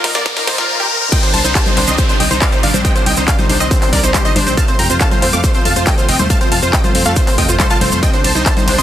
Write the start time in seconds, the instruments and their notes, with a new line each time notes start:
Already playing: riser
0.04 fm bass D#2, analog synth pad D#3 F3 A#3 F4, synth pluck D#4, digital synth lead A#4, supersaw synth A#4, snare, open hi-hat
0.15 fm bass D#2, analog synth pad D#3 F3 A#3 F4, synth pluck A#3, supersaw synth A#4 D5, digital synth lead D5, snare, closed hi-hat
0.26 synth pluck A#3, digital synth lead A#4, supersaw synth A#4, kick, snare, closed hi-hat, high conga
0.36 analog synth pad D#3 F3 A#3 F4, synth pluck D#4, digital synth lead A#4, supersaw synth A#4, snare, open hi-hat
0.47 fm bass D#2, supersaw synth D#4 C5, digital synth lead C5, kick, snare, open hi-hat
0.58 fm bass D#2, analog synth pad D#3 F3 A#3 F4, synth pluck F4, digital synth lead A#4, supersaw synth A#4, snare, closed hi-hat
0.69 supersaw synth A#4
0.80 supersaw synth G4 A#4
0.90 supersaw synth A#4
1.01 supersaw synth A#4
1.12 analog synth pad C3 D#3 G3 D4, synth pluck C4, supersaw synth D#5 G5, digital synth lead G5, kick, closed hi-hat, crash, downlifter, shaker
1.22 analog synth pad C3 D#3 G3 D4, synth pluck D4, supersaw synth C5, digital synth lead C5, closed hi-hat, shaker
1.34 fm bass C2, supersaw synth C5 A5, digital synth lead A5, open hi-hat
1.44 fm bass C2, analog synth pad C3 D#3 G3 D4, synth pluck D#4, digital synth lead C5, supersaw synth C5, closed hi-hat, shaker
1.55 analog synth pad C3 D#3 G3 D4, synth pluck G4, supersaw synth C5 A5, digital synth lead A5, kick, clap, closed hi-hat, shaker
1.66 synth pluck D#4, supersaw synth C5, digital synth lead C5, closed hi-hat, high conga, shaker
1.77 fm bass C2, analog synth pad C3 D#3 G3 D4, synth pluck D4, digital synth lead C5, supersaw synth C5, clap, open hi-hat
1.87 fm bass C2, analog synth pad C3 D#3 G3 D4, synth pluck C4, supersaw synth D#5 C6, digital synth lead C6, closed hi-hat, shaker
1.98 synth pluck C4, supersaw synth C5, digital synth lead C5, kick, closed hi-hat, shaker
2.09 analog synth pad C3 D#3 G3 D4, synth pluck D4, supersaw synth C5, digital synth lead C5, closed hi-hat, shaker
2.20 fm bass C2, supersaw synth D#5 G5, digital synth lead G5, open hi-hat
2.31 fm bass C2, analog synth pad C3 D#3 G3 D4, synth pluck D#4, digital synth lead C5, supersaw synth C5, closed hi-hat, shaker
2.41 analog synth pad C3 D#3 G3 D4, synth pluck G4, supersaw synth D5 F5, digital synth lead F5, kick, clap, open hi-hat, shaker
2.52 synth pluck D#4, supersaw synth C5, digital synth lead C5, closed hi-hat, shaker
2.63 fm bass G1, analog synth pad C3 D#3 G3 D4, synth pluck D4, supersaw synth D5 F5, digital synth lead F5, open hi-hat
2.74 fm bass A#1, synth pluck C4, supersaw synth C5, digital synth lead C5, closed hi-hat, high conga, shaker
2.85 analog synth pad C3 D#3 G3 D4, synth pluck C4, supersaw synth D#5 G5, digital synth lead G5, kick, closed hi-hat, shaker
2.95 analog synth pad C3 D#3 G3 D4, synth pluck D4, supersaw synth C5, digital synth lead C5, closed hi-hat, shaker
3.06 fm bass C2, supersaw synth D#5 G5, digital synth lead G5, open hi-hat
3.17 fm bass C2, analog synth pad C3 D#3 G3 D4, synth pluck D#4, digital synth lead C5, supersaw synth C5, closed hi-hat, shaker
3.28 analog synth pad C3 D#3 G3 D4, synth pluck G4, supersaw synth D5 F5, digital synth lead F5, kick, clap, closed hi-hat, shaker
3.38 synth pluck D#4, supersaw synth C5, digital synth lead C5, closed hi-hat, high conga, shaker
3.49 fm bass C2, analog synth pad C3 D#3 G3 D4, synth pluck D4, supersaw synth C5, digital synth lead C5, open hi-hat
3.60 fm bass C2, analog synth pad C3 D#3 G3 D4, synth pluck C4, supersaw synth C5 D#5, digital synth lead D#5, closed hi-hat, shaker
3.71 synth pluck C4, supersaw synth C5, digital synth lead C5, kick, closed hi-hat, shaker
3.82 analog synth pad C3 D#3 G3 D4, synth pluck D4, supersaw synth C5, digital synth lead C5, clap, open hi-hat, shaker
3.93 fm bass C2, supersaw synth A#4 D5, digital synth lead D5, kick, open hi-hat
4.03 fm bass C2, analog synth pad C3 D#3 G3 D4, synth pluck D#4, supersaw synth C5, digital synth lead C5, closed hi-hat, shaker
4.14 analog synth pad C3 D#3 G3 D4, synth pluck G4, supersaw synth C5, digital synth lead C5, kick, clap, closed hi-hat, high conga, shaker
4.25 synth pluck D#4, supersaw synth C5 D#5, digital synth lead D#5, closed hi-hat, shaker
4.36 fm bass G1, analog synth pad C3 D#3 G3 D4, synth pluck D4, digital synth lead C5, supersaw synth C5, open hi-hat, high conga
4.46 fm bass A#1, synth pluck C4, digital synth lead C5, supersaw synth C5, closed hi-hat, shaker
4.57 analog synth pad C3 F3 A3 F4, synth pluck A3, supersaw synth F5 A5, digital synth lead A5, kick, closed hi-hat, shaker
4.68 analog synth pad C3 F3 A3 F4, synth pluck C4, digital synth lead C5, supersaw synth C5, closed hi-hat, shaker
4.79 fm bass F2, supersaw synth G5 A#5, digital synth lead A#5, open hi-hat
4.90 fm bass F2, analog synth pad C3 F3 A3 F4, synth pluck F4, digital synth lead C5, supersaw synth C5, closed hi-hat, shaker
5.00 analog synth pad C3 F3 A3 F4, synth pluck A4, supersaw synth F5 A5, digital synth lead A5, kick, clap, closed hi-hat, shaker
5.11 synth pluck F4, digital synth lead C5, supersaw synth C5, closed hi-hat, high conga, shaker
5.22 fm bass F2, analog synth pad C3 F3 A3 F4, synth pluck C4, supersaw synth C5, digital synth lead C5, clap, open hi-hat
5.33 fm bass F2, analog synth pad C3 F3 A3 F4, synth pluck A3, supersaw synth F5 D6, digital synth lead D6, closed hi-hat, shaker
5.44 synth pluck A3, digital synth lead C5, supersaw synth C5, kick, closed hi-hat, shaker
5.54 analog synth pad C3 F3 A3 F4, synth pluck C4, digital synth lead C5, supersaw synth C5, closed hi-hat, shaker
5.65 fm bass F2, supersaw synth F5 A5, digital synth lead A5, open hi-hat
5.76 fm bass F2, analog synth pad C3 F3 A3 F4, synth pluck F4, supersaw synth C5, digital synth lead C5, closed hi-hat, shaker
5.86 analog synth pad C3 F3 A3 F4, synth pluck A4, supersaw synth D#5 G5, digital synth lead G5, kick, clap, open hi-hat, shaker
5.98 synth pluck F4, digital synth lead C5, supersaw synth C5, closed hi-hat, shaker
6.08 fm bass F1, analog synth pad C3 F3 A3 F4, synth pluck C4, supersaw synth D#5 G5, digital synth lead G5, open hi-hat
6.19 fm bass D#2, synth pluck A3, supersaw synth C5, digital synth lead C5, closed hi-hat, high conga, shaker
6.30 analog synth pad C3 F3 A3 F4, synth pluck A3, supersaw synth F5 A5, digital synth lead A5, kick, closed hi-hat, shaker
6.41 analog synth pad C3 F3 A3 F4, synth pluck C4, supersaw synth C5, digital synth lead C5, closed hi-hat, shaker
6.52 fm bass F2, supersaw synth F5 A5, digital synth lead A5, open hi-hat
6.62 fm bass F2, analog synth pad C3 F3 A3 F4, synth pluck F4, supersaw synth C5, digital synth lead C5, closed hi-hat, shaker
6.73 analog synth pad C3 F3 A3 F4, supersaw synth D#5 G5, digital synth lead G5, kick, clap, closed hi-hat, shaker
6.84 synth pluck F4, supersaw synth C5, digital synth lead C5, closed hi-hat, high conga, shaker
6.95 fm bass F2, analog synth pad C3 F3 A3 F4, synth pluck C4, digital synth lead C5, supersaw synth C5, open hi-hat
7.05 fm bass F2, analog synth pad C3 F3 A3 F4, synth pluck A3, supersaw synth A4 F5, digital synth lead F5, closed hi-hat, shaker
7.16 synth pluck A3, supersaw synth C5, digital synth lead C5, kick, closed hi-hat, shaker
7.27 analog synth pad C3 F3 A3 F4, synth pluck C4, digital synth lead C5, supersaw synth C5, clap, open hi-hat, shaker
7.38 fm bass F2, supersaw synth D#5 G5, digital synth lead G5, kick, open hi-hat
7.49 fm bass F2, analog synth pad C3 F3 A3 F4, synth pluck F4, supersaw synth C5, digital synth lead C5, closed hi-hat, shaker
7.60 analog synth pad C3 F3 A3 F4, synth pluck A4, supersaw synth C5, digital synth lead C5, kick, clap, closed hi-hat, high conga, shaker
7.70 synth pluck F4, supersaw synth F5 A5, digital synth lead A5, closed hi-hat, shaker
7.81 fm bass F1, analog synth pad C3 F3 A3 F4, synth pluck C4, digital synth lead C5, supersaw synth C5, open hi-hat, high conga
7.92 fm bass F2, synth pluck A3, supersaw synth C5, digital synth lead C5, shaker
8.03 analog synth pad C3 D#3 G3 D4, synth pluck C4, supersaw synth D#5 G5, digital synth lead G5, kick, closed hi-hat, ride, shaker
8.13 analog synth pad C3 D#3 G3 D4, synth pluck D4, supersaw synth C5, digital synth lead C5, closed hi-hat, shaker
8.24 fm bass C2, supersaw synth C5 A5, digital synth lead A5, open hi-hat, ride
8.35 fm bass C2, analog synth pad C3 D#3 G3 D4, synth pluck D#4, supersaw synth C5, digital synth lead C5, closed hi-hat, shaker
8.46 analog synth pad C3 D#3 G3 D4, synth pluck G4, supersaw synth C5 A5, digital synth lead A5, kick, clap, closed hi-hat, ride, shaker
8.57 synth pluck D#4, digital synth lead C5, supersaw synth C5, closed hi-hat, high conga, shaker
8.67 fm bass C2, analog synth pad C3 D#3 G3 D4, synth pluck D4, digital synth lead C5, supersaw synth C5, clap, open hi-hat, ride
8.78 fm bass C2, analog synth pad C3 D#3 G3 D4, synth pluck C4, supersaw synth D#5 C6, digital synth lead C6, closed hi-hat, shaker